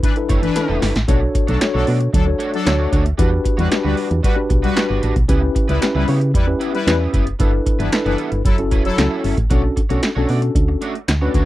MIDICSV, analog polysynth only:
0, 0, Header, 1, 2, 480
1, 0, Start_track
1, 0, Key_signature, 2, "minor"
1, 0, Tempo, 526316
1, 989, Time_signature, 4, 2, 24, 8
1, 10443, End_track
2, 0, Start_track
2, 0, Title_t, "Analog polysynth"
2, 0, Program_c, 0, 90
2, 24, Note_on_c, 0, 62, 95
2, 25, Note_on_c, 0, 52, 95
2, 25, Note_on_c, 0, 71, 98
2, 128, Note_off_c, 0, 62, 0
2, 129, Note_off_c, 0, 52, 0
2, 129, Note_off_c, 0, 71, 0
2, 381, Note_on_c, 0, 62, 106
2, 384, Note_on_c, 0, 52, 105
2, 385, Note_on_c, 0, 71, 112
2, 690, Note_off_c, 0, 62, 0
2, 692, Note_off_c, 0, 52, 0
2, 692, Note_off_c, 0, 71, 0
2, 1347, Note_on_c, 0, 62, 82
2, 1348, Note_on_c, 0, 54, 82
2, 1349, Note_on_c, 0, 69, 93
2, 1449, Note_off_c, 0, 62, 0
2, 1450, Note_off_c, 0, 54, 0
2, 1451, Note_off_c, 0, 69, 0
2, 1590, Note_on_c, 0, 62, 92
2, 1592, Note_on_c, 0, 54, 85
2, 1593, Note_on_c, 0, 69, 106
2, 1691, Note_off_c, 0, 62, 0
2, 1692, Note_off_c, 0, 54, 0
2, 1693, Note_off_c, 0, 69, 0
2, 1949, Note_on_c, 0, 62, 90
2, 1950, Note_on_c, 0, 54, 94
2, 1950, Note_on_c, 0, 69, 106
2, 2051, Note_off_c, 0, 62, 0
2, 2051, Note_off_c, 0, 69, 0
2, 2052, Note_off_c, 0, 54, 0
2, 2314, Note_on_c, 0, 69, 116
2, 2315, Note_on_c, 0, 54, 96
2, 2316, Note_on_c, 0, 62, 105
2, 2516, Note_off_c, 0, 54, 0
2, 2516, Note_off_c, 0, 69, 0
2, 2517, Note_off_c, 0, 62, 0
2, 3271, Note_on_c, 0, 55, 82
2, 3272, Note_on_c, 0, 66, 83
2, 3272, Note_on_c, 0, 71, 91
2, 3372, Note_off_c, 0, 55, 0
2, 3372, Note_off_c, 0, 66, 0
2, 3372, Note_off_c, 0, 71, 0
2, 3504, Note_on_c, 0, 71, 93
2, 3507, Note_on_c, 0, 55, 85
2, 3507, Note_on_c, 0, 66, 88
2, 3608, Note_off_c, 0, 71, 0
2, 3610, Note_off_c, 0, 55, 0
2, 3610, Note_off_c, 0, 66, 0
2, 3867, Note_on_c, 0, 55, 90
2, 3868, Note_on_c, 0, 66, 101
2, 3869, Note_on_c, 0, 71, 99
2, 3970, Note_off_c, 0, 55, 0
2, 3970, Note_off_c, 0, 66, 0
2, 3970, Note_off_c, 0, 71, 0
2, 4227, Note_on_c, 0, 55, 99
2, 4227, Note_on_c, 0, 66, 101
2, 4227, Note_on_c, 0, 71, 111
2, 4431, Note_off_c, 0, 66, 0
2, 4432, Note_off_c, 0, 55, 0
2, 4432, Note_off_c, 0, 71, 0
2, 5186, Note_on_c, 0, 71, 98
2, 5188, Note_on_c, 0, 55, 87
2, 5191, Note_on_c, 0, 64, 86
2, 5289, Note_off_c, 0, 71, 0
2, 5290, Note_off_c, 0, 55, 0
2, 5292, Note_off_c, 0, 64, 0
2, 5425, Note_on_c, 0, 55, 96
2, 5425, Note_on_c, 0, 64, 85
2, 5428, Note_on_c, 0, 71, 95
2, 5528, Note_off_c, 0, 64, 0
2, 5529, Note_off_c, 0, 55, 0
2, 5530, Note_off_c, 0, 71, 0
2, 5785, Note_on_c, 0, 55, 95
2, 5787, Note_on_c, 0, 71, 95
2, 5788, Note_on_c, 0, 64, 96
2, 5888, Note_off_c, 0, 55, 0
2, 5890, Note_off_c, 0, 64, 0
2, 5890, Note_off_c, 0, 71, 0
2, 6145, Note_on_c, 0, 55, 102
2, 6146, Note_on_c, 0, 64, 95
2, 6148, Note_on_c, 0, 71, 115
2, 6351, Note_off_c, 0, 55, 0
2, 6351, Note_off_c, 0, 64, 0
2, 6352, Note_off_c, 0, 71, 0
2, 7108, Note_on_c, 0, 62, 84
2, 7109, Note_on_c, 0, 71, 86
2, 7110, Note_on_c, 0, 52, 87
2, 7210, Note_off_c, 0, 62, 0
2, 7211, Note_off_c, 0, 52, 0
2, 7211, Note_off_c, 0, 71, 0
2, 7344, Note_on_c, 0, 71, 100
2, 7345, Note_on_c, 0, 62, 86
2, 7347, Note_on_c, 0, 52, 88
2, 7448, Note_off_c, 0, 62, 0
2, 7448, Note_off_c, 0, 71, 0
2, 7449, Note_off_c, 0, 52, 0
2, 7707, Note_on_c, 0, 54, 89
2, 7707, Note_on_c, 0, 64, 97
2, 7707, Note_on_c, 0, 69, 100
2, 7809, Note_off_c, 0, 64, 0
2, 7810, Note_off_c, 0, 54, 0
2, 7810, Note_off_c, 0, 69, 0
2, 8068, Note_on_c, 0, 54, 102
2, 8069, Note_on_c, 0, 64, 94
2, 8069, Note_on_c, 0, 69, 117
2, 8272, Note_off_c, 0, 54, 0
2, 8273, Note_off_c, 0, 64, 0
2, 8273, Note_off_c, 0, 69, 0
2, 10443, End_track
0, 0, End_of_file